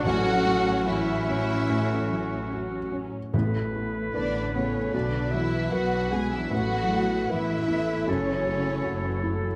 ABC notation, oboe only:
X:1
M:4/4
L:1/8
Q:1/4=76
K:F#m
V:1 name="Oboe"
F2 F4- F z | B4 B2 B2 | B2 B2 A4 |]